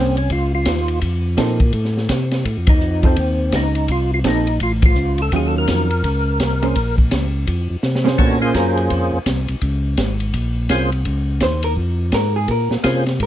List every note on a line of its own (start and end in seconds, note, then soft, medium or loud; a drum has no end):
0.00 0.30 C2 medium
0.00 0.15 A#3 soft
0.00 0.16 C4 medium
0.00 0.15 C#4 soft
0.00 0.16 G#4 soft
0.00 0.16 C5 soft
0.17 0.31 C#4 medium
0.17 ride soft
0.30 0.65 C#2 medium
0.30 0.52 F4 medium
0.30 kick soft
0.30 ride medium
0.55 1.00 F4 medium
0.65 1.01 D#2 medium
0.65 kick soft
0.65 snare medium
0.65 hi-hat pedal soft
0.65 ride medium
0.88 ride soft
1.01 1.37 F2 medium
1.01 kick soft
1.01 ride medium
1.37 1.73 A#2 medium
1.37 1.58 F3 medium
1.37 1.58 C4 medium
1.37 1.58 D#4 medium
1.37 1.58 A4 medium
1.37 kick soft
1.37 snare medium
1.37 hi-hat pedal medium
1.37 ride medium
1.60 kick medium
1.60 ride soft
1.73 2.08 A2 medium
1.73 kick soft
1.73 ride medium
1.85 snare soft
1.97 snare soft
2.09 2.44 C3 medium
2.09 kick soft
2.09 snare medium
2.09 hi-hat pedal medium
2.09 ride medium
2.31 snare soft
2.31 ride soft
2.45 2.57 A2 medium
2.45 kick soft
2.45 ride medium
2.57 2.69 F2 soft
2.67 2.80 D#2 medium
2.67 3.06 D#4 medium
2.67 kick medium
2.67 ride medium
2.81 3.16 F2 medium
2.81 hi-hat pedal soft
3.03 3.16 F3 medium
3.03 3.16 C4 medium
3.03 3.56 C4 medium
3.03 3.16 D#4 medium
3.03 3.16 A4 medium
3.03 kick medium
3.03 ride soft
3.16 3.52 D#2 medium
3.16 kick soft
3.16 ride medium
3.52 3.88 C#2 medium
3.52 3.91 D#4 medium
3.52 kick soft
3.52 snare medium
3.52 hi-hat pedal soft
3.52 ride medium
3.75 ride soft
3.88 4.23 C2 medium
3.88 4.11 F4 medium
3.88 kick soft
3.88 ride medium
4.14 4.19 F4 medium
4.24 4.59 A#1 medium
4.24 4.45 F3 medium
4.24 4.45 C4 soft
4.24 4.45 D#4 medium
4.24 4.60 D#4 medium
4.24 4.45 A4 medium
4.24 kick soft
4.24 snare medium
4.24 hi-hat pedal medium
4.24 ride medium
4.47 ride soft
4.60 4.95 A1 medium
4.60 4.73 F4 medium
4.60 kick soft
4.60 ride medium
4.82 5.21 F4 loud
4.82 kick medium
4.82 ride medium
4.96 5.31 C#2 medium
4.96 hi-hat pedal medium
5.18 ride soft
5.22 5.33 A4 medium
5.32 5.67 D#2 medium
5.32 5.86 D#3 medium
5.32 5.86 F#3 medium
5.32 5.87 C#4 medium
5.32 5.87 F4 medium
5.32 kick soft
5.32 ride medium
5.36 5.48 G#4 medium
5.48 5.56 A4 medium
5.58 6.96 A#4 medium
5.68 6.03 F2 medium
5.68 kick soft
5.68 snare medium
5.68 hi-hat pedal medium
5.68 ride medium
5.90 ride soft
6.04 6.39 C#2 medium
6.04 kick soft
6.04 ride medium
6.40 6.75 C2 medium
6.40 kick soft
6.40 snare medium
6.40 hi-hat pedal soft
6.40 ride medium
6.62 6.74 A#3 medium
6.62 6.74 C#4 medium
6.62 6.75 G#4 medium
6.62 6.75 C5 medium
6.62 ride soft
6.75 7.11 A#1 medium
6.75 kick soft
6.75 ride medium
6.98 kick soft
7.11 7.46 C#2 medium
7.11 kick soft
7.11 snare medium
7.11 hi-hat pedal medium
7.11 ride medium
7.47 7.68 F2 medium
7.47 kick soft
7.47 ride medium
7.70 7.77 F2 soft
7.83 8.18 C3 medium
7.83 snare soft
7.83 hi-hat pedal medium
7.95 snare medium
8.04 8.51 A#3 medium
8.04 8.52 C#4 medium
8.04 8.52 G#4 medium
8.04 8.52 C5 medium
8.04 snare medium
8.18 8.54 A#2 medium
8.18 8.39 B3 medium
8.18 8.39 D4 soft
8.18 8.39 F#4 soft
8.18 8.39 A4 medium
8.18 8.39 C#5 medium
8.18 kick medium
8.18 crash medium
8.42 9.18 A#3 medium
8.42 9.19 C#4 medium
8.42 9.19 F4 medium
8.42 9.19 G#4 medium
8.42 9.19 C5 medium
8.54 8.89 F#2 medium
8.54 8.77 A#4 medium
8.54 kick soft
8.54 snare medium
8.54 hi-hat pedal soft
8.54 ride medium
8.77 8.90 G#4 medium
8.77 ride soft
8.90 9.11 F2 medium
8.90 kick soft
8.90 ride medium
9.13 9.20 F2 soft
9.26 9.47 C2 medium
9.26 kick soft
9.26 snare medium
9.26 hi-hat pedal medium
9.26 ride medium
9.48 9.56 C2 soft
9.48 ride soft
9.61 9.97 C#2 medium
9.61 kick soft
9.61 ride medium
9.97 10.33 G#1 medium
9.97 kick soft
9.97 snare medium
9.97 hi-hat pedal medium
9.97 ride medium
10.20 ride soft
10.34 10.69 A#1 medium
10.34 kick soft
10.34 ride medium
10.69 11.04 C2 medium
10.69 10.90 A#3 medium
10.69 10.90 C#4 medium
10.69 10.91 F4 soft
10.69 10.91 G#4 medium
10.69 10.91 C5 medium
10.69 kick soft
10.69 snare medium
10.69 hi-hat pedal soft
10.69 ride medium
10.92 ride soft
11.05 11.40 C#2 medium
11.05 kick soft
11.05 ride medium
11.40 11.76 D#2 medium
11.40 11.64 C5 medium
11.40 kick soft
11.40 snare medium
11.40 hi-hat pedal medium
11.40 ride medium
11.63 11.72 A#4 medium
11.63 ride medium
11.77 12.12 F2 medium
11.77 kick soft
12.12 12.48 G#2 medium
12.12 12.36 A#4 medium
12.12 kick soft
12.12 snare medium
12.12 hi-hat pedal medium
12.12 ride medium
12.36 12.49 G#4 medium
12.48 12.69 A#2 medium
12.48 12.72 A#4 medium
12.48 kick soft
12.48 ride medium
12.70 12.77 A#2 soft
12.70 snare soft
12.84 13.19 C3 medium
12.84 13.04 A#3 medium
12.84 13.04 C#4 medium
12.84 13.05 F4 medium
12.84 13.04 G#4 medium
12.84 13.05 C5 medium
12.84 kick soft
12.84 snare medium
12.84 hi-hat pedal medium
12.84 ride medium
13.06 snare soft
13.06 ride soft
13.20 13.26 G#2 medium
13.20 13.26 A#4 medium
13.20 kick soft
13.20 ride medium